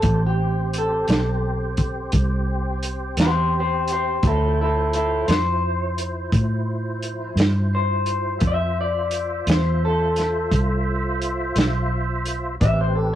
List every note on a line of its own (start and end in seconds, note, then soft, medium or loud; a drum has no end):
0.00 1.05 A1 medium
0.00 4.18 C4 medium
0.00 4.18 G4 medium
0.00 0.19 A4 medium
0.00 4.17 C5 medium
0.00 kick medium
0.00 closed hi-hat medium
0.26 0.75 G4 medium
0.73 closed hi-hat medium
0.78 2.81 A4 medium
1.08 2.10 B1 medium
1.08 snare medium
1.08 closed hi-hat medium
1.77 kick medium
1.77 closed hi-hat medium
2.12 3.15 C2 medium
2.12 kick medium
2.12 closed hi-hat medium
2.83 closed hi-hat medium
3.17 4.19 E2 medium
3.17 3.53 C5 medium
3.17 snare medium
3.17 closed hi-hat medium
3.21 3.54 G4 medium
3.59 3.89 G4 soft
3.59 3.91 C5 medium
3.88 4.22 G4 medium
3.88 closed hi-hat medium
3.92 4.24 C5 medium
4.22 5.25 D2 medium
4.22 8.38 F3 medium
4.22 8.38 E4 medium
4.22 8.38 C5 medium
4.22 kick medium
4.22 closed hi-hat medium
4.27 4.57 E4 medium
4.27 4.59 A4 medium
4.61 4.92 E4 medium
4.61 4.94 A4 medium
4.93 5.27 E4 medium
4.93 5.28 A4 medium
4.93 closed hi-hat medium
5.28 6.29 F2 medium
5.28 7.33 C5 medium
5.28 snare medium
5.28 closed hi-hat medium
5.98 closed hi-hat medium
6.32 7.34 A2 medium
6.32 kick medium
6.32 closed hi-hat medium
7.03 closed hi-hat soft
7.36 8.38 G2 medium
7.36 closed hi-hat medium
7.40 snare medium
7.75 8.41 C5 medium
8.06 closed hi-hat soft
8.39 9.44 F2 medium
8.39 12.56 F4 medium
8.39 12.55 C5 medium
8.39 12.55 E5 medium
8.39 kick medium
8.39 closed hi-hat medium
8.47 8.78 E5 medium
8.81 9.47 D5 medium
9.11 closed hi-hat medium
9.47 10.48 E2 medium
9.47 9.82 C5 medium
9.47 snare medium
9.47 closed hi-hat medium
9.85 11.89 A4 medium
10.16 snare soft
10.16 closed hi-hat medium
10.52 11.53 C2 medium
10.52 kick medium
10.52 closed hi-hat medium
11.22 closed hi-hat medium
11.56 12.57 B1 medium
11.56 snare loud
11.56 closed hi-hat medium
12.26 closed hi-hat medium
12.61 13.15 A1 medium
12.61 13.15 C4 medium
12.61 13.15 G4 medium
12.61 13.15 B4 medium
12.61 12.78 E5 medium
12.61 kick loud
12.61 closed hi-hat medium
12.81 12.95 C5 medium
12.95 13.13 A4 medium